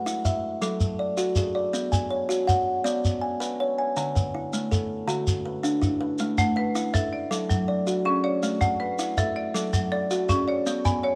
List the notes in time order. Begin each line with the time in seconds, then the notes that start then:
Already playing: B4 F#5
0.06 E4, shekere
0.25 E5, shekere
0.62 F#3 A4, shekere
0.81 shekere
0.99 D5
1.17 F#4, shekere
1.36 G#4, shekere
1.55 D5
1.73 B3, shekere
1.92 G#5, shekere
2.10 C#5
2.29 F#4, shekere
2.47 F#5, shekere
2.84 B3 D5, shekere
3.05 shekere
3.21 G#5
3.40 B4, shekere
3.60 C#5
3.78 G#5
3.97 D3, shekere
4.15 B4, shekere
4.34 E4
4.53 A3, shekere
4.71 A4, shekere
5.08 D3 F#4, shekere
5.27 shekere
5.46 B4
5.63 D4, shekere
5.82 E4, shekere
6.01 B4
6.19 A3, shekere
6.38 A3 F#5, shekere
6.56 B4
6.75 E4, shekere
6.94 A4 E5, shekere
7.13 D5
7.31 F#3 A4, shekere
7.49 F#3, shekere
7.68 D5
7.87 F#4, shekere
8.05 C#4 G#4
8.24 C#5 D5
8.43 A3, shekere
8.61 A3 F#5, shekere
8.80 B4
8.99 E4, shekere
9.18 A4 E5, shekere
9.36 D5
9.54 F#3 A4, shekere
9.73 F#3, shekere
9.92 A4 D5
10.11 F#4, shekere
10.29 C#4 G#4, shekere
10.48 C#5 D5
10.66 B3, shekere
10.85 B3 G#5, shekere
11.03 C#5